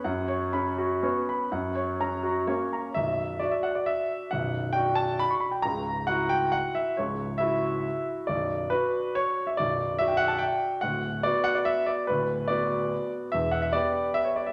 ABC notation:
X:1
M:3/4
L:1/16
Q:1/4=138
K:Bm
V:1 name="Grand piano"
f2 c2 b2 F2 c2 b2 | f2 c2 ^a2 F2 c2 a2 | e4 d e f d e4 | f4 g2 a2 b c' b g |
^a4 f2 g2 f2 e2 | c4 e6 z2 | d4 B4 c3 e | d4 e g f a g4 |
f4 d2 f d e2 d2 | B4 d6 z2 | e2 f e d4 e c d e |]
V:2 name="Grand piano"
F,,4 C4 [B,C]4 | F,,4 C4 [^A,C]4 | [B,,,,B,,,]4 [DF]8 | [B,,,,B,,,]4 [DF]8 |
[C,,,C,,]4 [EF]8 | [C,,,C,,]4 [EF]8 | [B,,,,B,,,]4 [DF]8 | [B,,,,B,,,]4 [DF]8 |
[D,,,D,,]4 [B,F]8 | [D,,,D,,]4 [B,F]8 | [E,,,E,,]4 [B,G]8 |]